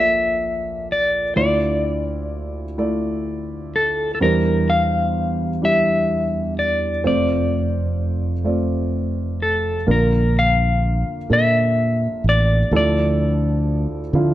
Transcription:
Already playing: A#1 A#2 A#3 F4 A4 A#4 D5 E5
0.92 D5
1.36 D2 D3 A3 E4 F4 D5
2.78 A3 E4 F4 D5
3.76 A4
4.15 A4
4.20 E2 E3 G3 D4 G4 A#4 C5
4.70 F5
5.62 G3 D4 E4 G4 E5
6.59 D5
7.04 F1 F2 A3 C4 F4 C5 D5
8.44 A3 C4 F4 D5
9.42 A4
9.87 A#1 D3 A#3 D4 F4 A#4
9.91 A#4
10.39 F5
11.30 A#2 D4 F4 A4 A#4 E5
12.24 A1
12.29 D5
12.71 D2 D3 F3 D4 E4 A4
12.76 D5
14.13 D3 F3 D4 E4 F4

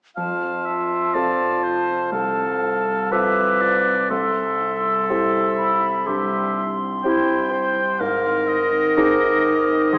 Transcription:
0.16 F2 F4 F5 A5
0.41 C4
0.65 F4 E5
0.91 C4
1.14 C3 C4 F4 A4 D5 A5
1.40 C4
1.63 F4 C5
1.89 C4
2.12 C2 C3 A4 F5
2.38 C4
2.62 F4
2.87 C4
3.11 C3 C4 F4 A4 B4 E5 D6
3.36 C4
3.61 F4 D5
3.86 C4
4.10 C2 C3 A4 E5 C6
4.35 C4
4.60 E4
4.84 C4
5.09 G3 C4 E4 G4 C6
5.34 C4
5.57 E4 B5
5.82 C4
6.06 G2 G3 G4 C6
6.32 C4
6.56 E4
6.80 C4
7.03 G3 C4 E4 G4 G5
7.27 C4
7.52 E4 C5
7.76 C4
7.99 G#2 A#4 F5
8.24 C4
8.48 D#4 D#5
8.72 C4
8.96 D#3 C4 D#4 G#4 D6
9.20 C4
9.45 D#4
9.68 C4
9.93 D#2 D#3 G#4 C6

